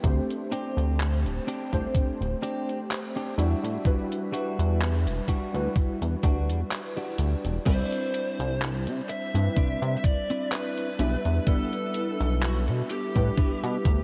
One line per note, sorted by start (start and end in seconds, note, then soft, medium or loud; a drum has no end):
0.03 0.21 D2 loud
0.03 1.66 A3 medium
0.03 1.67 C4 medium
0.03 1.67 D4 medium
0.03 1.67 G4 medium
0.03 1.68 C5 medium
0.03 kick loud
0.03 closed hi-hat medium
0.31 closed hi-hat soft
0.52 1.00 C4 loud
0.52 1.00 D4 loud
0.52 1.00 G4 loud
0.52 closed hi-hat medium
0.77 1.27 D2 loud
0.77 closed hi-hat soft
1.00 clap loud
1.00 closed hi-hat medium
1.25 1.39 D1 medium
1.25 closed hi-hat soft
1.47 1.95 C4 medium
1.47 1.95 D4 medium
1.47 1.95 G4 medium
1.47 closed hi-hat medium
1.72 1.87 C2 medium
1.72 1.91 A3 medium
1.72 1.91 C4 medium
1.72 1.91 D4 medium
1.72 1.91 G4 medium
1.72 1.92 C5 loud
1.72 kick medium
1.72 closed hi-hat soft
1.94 2.15 D1 soft
1.94 kick loud
1.94 closed hi-hat medium
2.21 2.35 D1 medium
2.21 closed hi-hat soft
2.42 2.79 C4 loud
2.42 2.79 D4 loud
2.42 2.79 G4 loud
2.42 closed hi-hat medium
2.69 closed hi-hat soft
2.91 clap loud
2.91 closed hi-hat medium
3.16 3.37 C4 medium
3.16 3.37 D4 medium
3.16 3.38 G4 medium
3.16 closed hi-hat soft
3.37 3.54 E2 medium
3.37 3.80 G3 medium
3.37 4.16 G3 medium
3.37 3.80 D4 medium
3.37 4.16 D4 medium
3.37 3.80 E4 medium
3.37 4.16 F#4 loud
3.37 3.81 F#4 medium
3.37 3.81 E5 medium
3.37 closed hi-hat medium
3.64 3.78 A2 medium
3.64 closed hi-hat soft
3.85 4.07 G3 loud
3.85 4.07 D4 medium
3.85 4.07 E4 medium
3.85 4.07 F#4 medium
3.85 4.07 B4 loud
3.85 kick loud
3.85 closed hi-hat medium
4.12 closed hi-hat soft
4.32 4.80 G3 loud
4.32 4.81 D4 loud
4.32 4.81 F#4 loud
4.32 closed hi-hat medium
4.59 5.08 E2 loud
4.59 closed hi-hat soft
4.81 clap loud
4.81 closed hi-hat medium
5.06 5.20 E1 medium
5.06 closed hi-hat soft
5.28 5.76 G3 medium
5.28 5.76 D4 medium
5.28 5.76 F#4 medium
5.28 kick medium
5.28 closed hi-hat medium
5.52 5.68 D2 medium
5.52 7.60 G3 medium
5.52 7.61 D4 medium
5.52 7.61 E4 medium
5.52 7.62 F#4 medium
5.52 7.62 B4 loud
5.52 closed hi-hat soft
5.76 kick loud
5.76 closed hi-hat medium
6.02 6.16 E2 medium
6.02 closed hi-hat soft
6.23 6.51 D2 medium
6.23 6.60 G3 loud
6.23 6.60 D4 loud
6.23 6.60 F#4 loud
6.23 kick loud
6.23 closed hi-hat medium
6.49 6.63 E2 medium
6.49 closed hi-hat soft
6.71 clap loud
6.71 closed hi-hat medium
6.96 7.55 G3 medium
6.96 7.56 D4 medium
6.96 7.56 F#4 loud
6.96 closed hi-hat soft
7.18 7.35 D2 loud
7.18 closed hi-hat loud
7.44 7.58 E1 medium
7.44 closed hi-hat soft
7.65 7.83 C2 loud
7.65 9.28 G3 medium
7.65 9.29 C4 medium
7.65 8.40 C4 loud
7.65 8.40 D4 loud
7.65 9.29 D4 medium
7.65 8.40 E4 loud
7.65 9.29 E4 medium
7.65 8.40 B4 loud
7.65 8.58 C5 loud
7.65 9.30 D5 medium
7.65 kick loud
7.65 closed hi-hat medium
7.65 crash loud
7.92 closed hi-hat soft
8.14 closed hi-hat medium
8.39 8.89 C2 loud
8.39 closed hi-hat soft
8.62 clap loud
8.62 closed hi-hat medium
8.87 9.01 C3 medium
8.87 closed hi-hat soft
9.09 9.97 E5 loud
9.09 muted clean electric guitar stroke soft
9.09 closed hi-hat loud
9.34 9.49 G2 medium
9.34 9.53 G3 medium
9.34 9.53 C4 medium
9.34 9.53 D4 medium
9.34 9.53 E4 medium
9.34 9.53 B4 loud
9.34 muted clean electric guitar stroke loud
9.34 closed hi-hat soft
9.56 9.77 C3 soft
9.56 9.94 C4 medium
9.56 9.94 D4 medium
9.56 9.94 E4 medium
9.56 9.94 D5 medium
9.56 kick loud
9.56 closed hi-hat medium
9.82 9.96 C3 medium
9.82 closed hi-hat soft
9.98 10.04 E5 medium
10.04 10.49 D5 loud
10.04 kick loud
10.04 closed hi-hat loud
10.30 10.89 C4 medium
10.30 10.89 D4 medium
10.30 10.89 E4 medium
10.30 10.89 B4 loud
10.30 closed hi-hat soft
10.52 11.47 B4 loud
10.52 clap loud
10.52 closed hi-hat medium
10.77 closed hi-hat soft
10.98 11.16 B1 loud
10.98 11.41 G3 medium
10.98 11.42 B3 medium
10.98 11.42 D4 medium
10.98 12.53 D4 medium
10.98 11.42 E4 medium
10.98 12.53 E4 medium
10.98 12.53 G4 medium
10.98 12.53 B4 loud
10.98 11.42 E5 medium
10.98 closed hi-hat loud
11.25 11.39 E2 medium
11.25 closed hi-hat soft
11.46 11.68 G3 loud
11.46 11.68 B3 medium
11.46 11.69 D4 medium
11.46 11.69 E4 medium
11.46 12.45 A4 loud
11.46 11.69 B4 loud
11.46 kick loud
11.46 closed hi-hat medium
11.73 closed hi-hat soft
11.94 closed hi-hat loud
12.20 12.69 B1 loud
12.20 closed hi-hat soft
12.42 12.55 F#4 medium
12.42 clap loud
12.42 closed hi-hat medium
12.68 12.82 B2 medium
12.68 closed hi-hat soft
12.90 14.04 G4 medium
12.90 muted clean electric guitar stroke soft
12.90 closed hi-hat loud
13.15 13.30 A2 medium
13.15 14.04 G3 medium
13.15 14.04 B3 medium
13.15 14.04 D4 medium
13.15 14.04 E4 medium
13.15 14.04 B4 loud
13.15 muted clean electric guitar stroke medium
13.15 kick medium
13.15 closed hi-hat soft
13.37 13.75 D4 medium
13.37 13.75 E4 medium
13.37 13.75 G4 medium
13.37 13.75 B4 medium
13.37 kick loud
13.37 closed hi-hat medium
13.63 13.78 B2 loud
13.63 closed hi-hat soft
13.85 14.04 D2 medium
13.85 kick loud
13.85 closed hi-hat loud